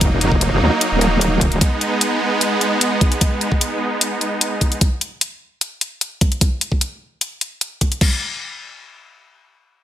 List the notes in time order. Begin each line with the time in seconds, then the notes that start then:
Already playing: F#3 A#3 D#4
0.01 F#1, kick, closed hi-hat
0.21 closed hi-hat
0.32 F1, kick
0.41 closed hi-hat
0.52 F1
0.61 D#2
0.81 closed hi-hat
0.92 D#1
1.01 closed hi-hat
1.21 closed hi-hat
1.41 kick, closed hi-hat
1.52 D#1, closed hi-hat
1.61 G#3 B3, kick, closed hi-hat
1.81 closed hi-hat
2.01 closed hi-hat
2.41 closed hi-hat
2.61 closed hi-hat
2.81 closed hi-hat
3.01 kick, closed hi-hat
3.12 closed hi-hat
3.21 kick, closed hi-hat
3.41 closed hi-hat
3.52 kick
3.61 closed hi-hat
4.01 closed hi-hat
4.21 closed hi-hat
4.41 closed hi-hat
4.61 kick, closed hi-hat
4.72 closed hi-hat
4.81 kick, closed hi-hat
5.01 closed hi-hat
5.21 closed hi-hat
5.61 closed hi-hat
5.81 closed hi-hat
6.01 closed hi-hat
6.21 kick, closed hi-hat
6.32 closed hi-hat
6.41 kick, closed hi-hat
6.61 closed hi-hat
6.72 kick
6.81 closed hi-hat
7.21 closed hi-hat
7.41 closed hi-hat
7.61 closed hi-hat
7.81 kick, closed hi-hat
7.92 closed hi-hat
8.01 kick, crash